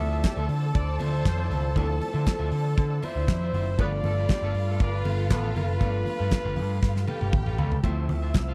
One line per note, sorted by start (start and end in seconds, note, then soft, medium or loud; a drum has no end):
0.00 0.20 D2 loud
0.00 1.71 F3 medium
0.00 1.72 A3 medium
0.00 1.72 C4 medium
0.00 1.73 E4 medium
0.00 2.99 A4 medium
0.00 3.74 C5 medium
0.00 3.75 D5 medium
0.00 0.48 E5 loud
0.00 2.99 A5 loud
0.00 3.74 E6 medium
0.00 muted clean electric guitar stroke medium
0.00 open hi-hat medium
0.13 0.23 F4 medium
0.13 0.23 C5 medium
0.13 0.23 E5 medium
0.24 0.35 G3 medium
0.24 0.35 G4 medium
0.24 kick loud
0.24 snare loud
0.24 clap loud
0.24 closed hi-hat medium
0.24 high conga medium
0.37 0.47 D2 medium
0.37 0.45 A3 medium
0.37 0.47 F4 medium
0.37 0.45 A4 medium
0.37 0.48 C5 medium
0.37 0.48 E5 medium
0.49 0.70 D3 medium
0.49 muted clean electric guitar stroke medium
0.49 open hi-hat medium
0.62 0.72 A3 medium
0.62 0.72 A4 medium
0.62 muted clean electric guitar stroke soft
0.74 0.96 D2 medium
0.74 0.95 D4 medium
0.74 1.79 C5 medium
0.74 0.95 D5 loud
0.74 muted clean electric guitar stroke medium
0.74 kick loud
0.74 closed hi-hat medium
0.74 muted conga soft
0.87 muted clean electric guitar stroke soft
0.99 1.21 D2 medium
0.99 1.12 F4 medium
0.99 1.11 C5 medium
0.99 1.11 E5 medium
0.99 open hi-hat medium
0.99 muted conga medium
1.12 1.23 F4 medium
1.12 1.24 C5 medium
1.12 1.24 E5 medium
1.24 1.46 F2 medium
1.24 1.46 C4 medium
1.24 1.46 C5 loud
1.24 muted clean electric guitar stroke soft
1.24 kick loud
1.24 snare loud
1.24 clap medium
1.24 closed hi-hat medium
1.24 high conga medium
1.38 1.49 F4 soft
1.38 1.49 C5 medium
1.38 1.49 E5 medium
1.50 1.72 C#2 loud
1.50 1.68 F4 medium
1.50 1.63 C5 medium
1.50 1.62 E5 medium
1.50 open hi-hat medium
1.50 high conga medium
1.63 muted clean electric guitar stroke medium
1.75 1.97 D2 loud
1.75 1.82 E3 medium
1.75 3.74 A3 medium
1.75 3.75 C4 medium
1.75 3.75 E4 medium
1.75 1.93 F4 medium
1.75 2.27 A4 loud
1.75 1.88 C5 medium
1.75 1.87 E5 loud
1.75 kick loud
1.75 closed hi-hat medium
1.75 muted conga medium
1.81 3.76 F3 medium
1.89 muted clean electric guitar stroke medium
2.00 muted clean electric guitar stroke soft
2.00 open hi-hat medium
2.00 muted conga soft
2.13 2.24 D3 medium
2.13 2.24 F4 soft
2.13 2.25 C5 medium
2.13 2.25 E5 medium
2.27 3.06 A4 loud
2.27 kick loud
2.27 snare loud
2.27 clap medium
2.27 closed hi-hat medium
2.27 high conga medium
2.39 2.50 D2 medium
2.39 2.50 F4 medium
2.39 2.50 C5 medium
2.39 2.51 E5 medium
2.51 2.73 D3 loud
2.51 muted clean electric guitar stroke soft
2.51 open hi-hat medium
2.64 muted clean electric guitar stroke soft
2.77 2.98 D3 loud
2.77 muted clean electric guitar stroke soft
2.77 kick loud
2.77 closed hi-hat medium
2.77 muted conga soft
2.90 muted clean electric guitar stroke soft
3.02 3.77 E4 medium
3.02 3.16 F4 medium
3.02 3.15 C5 medium
3.02 3.82 C5 loud
3.02 3.14 E5 medium
3.02 3.77 E5 medium
3.02 open hi-hat medium
3.02 muted conga medium
3.15 3.26 D2 loud
3.15 3.27 F4 medium
3.15 3.27 C5 medium
3.15 3.28 E5 medium
3.28 3.49 F2 medium
3.28 muted clean electric guitar stroke soft
3.28 kick loud
3.28 snare loud
3.28 clap medium
3.28 closed hi-hat medium
3.28 high conga medium
3.42 3.53 F4 medium
3.42 3.53 C5 medium
3.42 3.54 E5 medium
3.53 3.74 F#1 medium
3.53 3.68 F4 medium
3.53 3.66 C5 medium
3.53 3.66 E5 medium
3.53 open hi-hat medium
3.53 high conga medium
3.67 muted clean electric guitar stroke medium
3.78 4.00 G1 loud
3.78 5.77 F3 medium
3.78 5.77 A3 medium
3.78 3.86 B3 loud
3.78 5.78 B3 medium
3.78 5.78 D4 medium
3.78 7.04 F4 medium
3.78 7.80 A4 medium
3.78 3.97 A4 medium
3.78 3.87 B4 loud
3.78 3.92 B4 medium
3.78 4.81 D5 loud
3.78 7.80 F5 medium
3.78 7.04 F5 medium
3.78 3.92 F5 loud
3.78 7.80 B5 medium
3.78 kick loud
3.78 closed hi-hat medium
3.78 muted conga medium
3.93 muted clean electric guitar stroke medium
4.04 4.25 G1 loud
4.04 4.12 A3 medium
4.04 4.12 A4 medium
4.04 muted clean electric guitar stroke soft
4.04 open hi-hat medium
4.04 muted conga medium
4.18 4.29 A4 medium
4.18 4.30 B4 medium
4.18 4.30 F5 medium
4.29 4.40 G3 medium
4.29 4.40 G4 medium
4.29 muted clean electric guitar stroke soft
4.29 kick loud
4.29 snare loud
4.29 clap medium
4.29 closed hi-hat medium
4.29 high conga medium
4.42 4.52 G1 medium
4.42 4.50 A3 medium
4.42 4.50 A4 medium
4.42 4.54 A4 medium
4.42 4.55 B4 medium
4.42 4.55 F5 medium
4.54 4.76 G2 medium
4.54 muted clean electric guitar stroke soft
4.54 open hi-hat medium
4.69 4.78 A3 loud
4.69 4.78 A4 loud
4.69 muted clean electric guitar stroke soft
4.80 5.01 G1 loud
4.80 5.00 D4 medium
4.80 5.34 B4 loud
4.80 5.00 D5 loud
4.80 muted clean electric guitar stroke soft
4.80 kick loud
4.80 closed hi-hat medium
4.80 muted conga soft
4.93 muted clean electric guitar stroke medium
5.05 5.31 G1 medium
5.05 5.18 A4 medium
5.05 5.18 B4 medium
5.05 5.17 F5 loud
5.05 open hi-hat medium
5.05 muted conga medium
5.18 5.30 A4 medium
5.18 5.30 B4 medium
5.18 5.30 F5 medium
5.30 5.52 A1 medium
5.30 5.51 B3 loud
5.30 5.57 A4 medium
5.30 5.51 B4 loud
5.30 muted clean electric guitar stroke soft
5.30 kick loud
5.30 snare loud
5.30 clap loud
5.30 closed hi-hat medium
5.30 high conga medium
5.44 5.54 A4 soft
5.44 5.54 B4 medium
5.44 5.55 F5 medium
5.55 5.77 F#1 loud
5.55 5.73 A4 medium
5.55 5.69 B4 medium
5.55 7.55 B4 loud
5.55 5.68 F5 loud
5.55 open hi-hat medium
5.55 high conga medium
5.69 muted clean electric guitar stroke soft
5.80 6.02 G1 loud
5.80 7.79 F3 medium
5.80 7.79 A3 medium
5.80 7.80 B3 medium
5.80 7.80 D4 medium
5.80 5.98 A4 medium
5.80 5.94 B4 medium
5.80 5.93 F5 loud
5.80 kick loud
5.80 closed hi-hat medium
5.80 muted conga medium
5.94 muted clean electric guitar stroke soft
6.06 muted clean electric guitar stroke soft
6.06 open hi-hat medium
6.06 muted conga soft
6.19 6.30 G2 medium
6.19 6.30 A4 soft
6.19 6.31 B4 medium
6.19 6.31 F5 medium
6.31 muted clean electric guitar stroke soft
6.31 kick loud
6.31 snare loud
6.31 clap medium
6.31 closed hi-hat medium
6.31 high conga medium
6.44 6.58 G1 medium
6.44 6.55 A4 medium
6.44 6.55 B4 medium
6.44 6.56 F5 medium
6.56 6.78 G2 medium
6.56 muted clean electric guitar stroke soft
6.56 open hi-hat medium
6.70 muted clean electric guitar stroke soft
6.82 7.03 G2 loud
6.82 muted clean electric guitar stroke soft
6.82 kick loud
6.82 snare medium
6.82 muted conga soft
6.96 muted clean electric guitar stroke soft
6.96 snare medium
7.08 7.83 G4 medium
7.08 7.21 A4 medium
7.08 7.21 B4 loud
7.08 7.20 F5 medium
7.08 7.83 G5 medium
7.08 high tom medium
7.08 muted conga medium
7.21 7.31 G1 loud
7.21 7.32 A4 medium
7.21 7.33 B4 medium
7.21 7.33 F5 medium
7.21 high tom medium
7.33 7.58 A1 medium
7.33 muted clean electric guitar stroke soft
7.33 kick loud
7.33 mid tom medium
7.33 high conga medium
7.46 7.57 A4 soft
7.46 7.58 B4 medium
7.46 7.59 F5 medium
7.46 mid tom medium
7.58 7.79 C#2 loud
7.58 7.76 A4 medium
7.58 7.71 B4 medium
7.58 7.71 F5 medium
7.58 floor tom loud
7.58 high conga medium
7.72 muted clean electric guitar stroke medium
7.72 floor tom medium
7.83 8.05 D2 loud
7.83 8.54 F3 medium
7.83 8.54 A3 medium
7.83 8.54 C4 medium
7.83 8.54 E4 medium
7.83 8.07 F4 medium
7.83 8.54 C5 medium
7.83 8.07 C5 medium
7.83 8.54 E5 medium
7.83 8.08 E5 medium
7.83 8.54 E6 medium
7.83 kick medium
7.83 closed hi-hat medium
7.83 muted conga medium
8.09 8.30 D2 medium
8.09 muted clean electric guitar stroke soft
8.09 open hi-hat medium
8.09 muted conga soft
8.22 8.33 F4 medium
8.22 8.34 C5 medium
8.22 8.34 E5 medium
8.34 8.54 C2 loud
8.34 kick loud
8.34 snare loud
8.34 clap medium
8.34 closed hi-hat medium
8.34 high conga medium
8.48 8.54 F4 medium
8.48 8.54 C5 medium
8.48 8.54 F5 medium